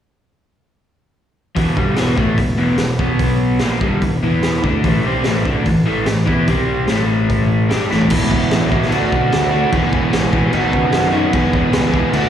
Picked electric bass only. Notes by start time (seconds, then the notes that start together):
1.57 E1
1.77 G1
1.99 E1
2.18 A1
2.38 E1
2.60 E1
2.79 E1
2.99 B1
3.61 A#1
3.81 G1
4.02 E1
4.23 E2
4.64 D2
4.85 A1
5.06 C2
5.26 A1
5.45 D2
5.66 A1
5.89 A1
6.09 A1
6.28 E2
6.48 C2
6.91 A1
7.72 G2
7.92 A1
8.11 E1
8.53 A1
8.92 D2
9.13 B2
9.34 D2
9.72 E1
10.13 A1
10.54 D#2
10.74 C#3
10.94 F#2
11.33 E1
11.73 C#2
12.14 D2